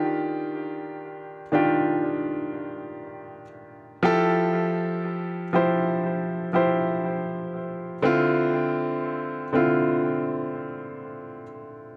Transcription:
\new Staff \with { instrumentName = "Grand piano" } { \time 4/4 \key f \major \tempo 4 = 60 <ees d' f' g'>4. <ees d' f' g'>2 r8 | <f e' g' a'>4. <f e' g' c''>4 <f e' g' c''>4. | <d c' e' f'>4. <d c' e' f'>2 r8 | }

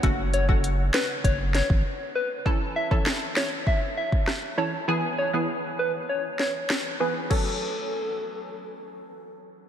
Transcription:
<<
  \new Staff \with { instrumentName = "Soft synth lead" } { \time 4/4 \key fis \minor \tempo 4 = 99 r8 cis''16 r8. b'16 r16 cis''16 r16 cis''16 r8. b'16 r16 | r8 e''16 r8. cis''16 r16 e''16 r16 e''16 r8. cis''16 r16 | r8 cis''16 r8. b'16 r16 cis''16 r16 cis''16 r8. b'16 r16 | a'2. r4 | }
  \new Staff \with { instrumentName = "Synth stab" } { \time 4/4 \key fis \minor <cis a fis'>8. <cis a fis'>16 r2. | <e cis' a'>8. <e cis' a'>16 r2 r8 <e cis' a'>16 r16 | <e b gis'>8. <e b gis'>16 r2 r8 <e b gis'>8 | <fis cis' a'>1 | }
  \new Staff \with { instrumentName = "Sub bass" } { \clef bass \time 4/4 \key fis \minor fis,,4. r8 fis,,8. gis,,16 r4 | r1 | r1 | r1 | }
  \new DrumStaff \with { instrumentName = "Drums" } \drummode { \time 4/4 <hh bd>8 hh16 bd16 hh8 <hh sn>8 <hh bd>8 <hh sn>16 bd16 r4 | bd8. bd16 sn8 sn8 bd8. bd16 <ss sn>4 | r4 r4 r8 sn8 <ss sn>4 | <cymc bd>4 r4 r4 r4 | }
>>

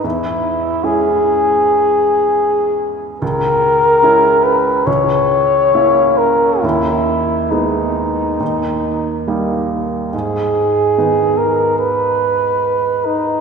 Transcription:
<<
  \new Staff \with { instrumentName = "Trumpet" } { \time 4/4 \key gis \minor \tempo 4 = 72 e'4 gis'2~ gis'8 r8 | ais'4. b'8 cis''4. ais'8 | e'4 dis'2 r4 | gis'4. ais'8 b'4. dis'8 | }
  \new Staff \with { instrumentName = "Grand piano" } { \time 4/4 \key gis \minor e,4 <gis cis' e'>2. | cis,4 <gis cis' e'>4 cis,4 <ais cis' e'>4 | dis,4 <gis b dis'>4 dis,4 <g ais dis'>4 | gis,4 <dis b dis'>2. | }
>>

